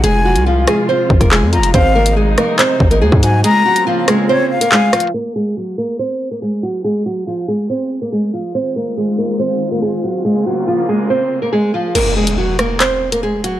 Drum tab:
CC |------------------------------------------------|------------------------------------------------|------------------------------------------------|------------------------------------------------|
HH |x--------x--------x--------------x--------x--x--|x--------x--------x-----x--------x--------x-----|x--------x--------x--------------x--------x-x-x-|------------------------------------------------|
CP |------------------------------------x-----------|------------------------x-----------------------|------------------------------------x-----------|------------------------------------------------|
SD |------------------r-----------------------------|------------------r-----------------------------|------------------r-----------------------r-----|------------------------------------------------|
BD |------------------------------o--o--------------|o-----------------------------o--------o--------|------------------------------------------------|------------------------------------------------|

CC |------------------------------------------------|------------------------------------------------|------------------------------------------------|x-----------------------------------------------|
HH |------------------------------------------------|------------------------------------------------|------------------------------------------------|x--------x--------x-----x--------x--------x-----|
CP |------------------------------------------------|------------------------------------------------|------------------------------------------------|------------------------x-----------------------|
SD |------------------------------------------------|------------------------------------------------|------------------------------------------------|------------------r-----------------------------|
BD |------------------------------------------------|------------------------------------------------|------------------------------------------------|------------------------------------------------|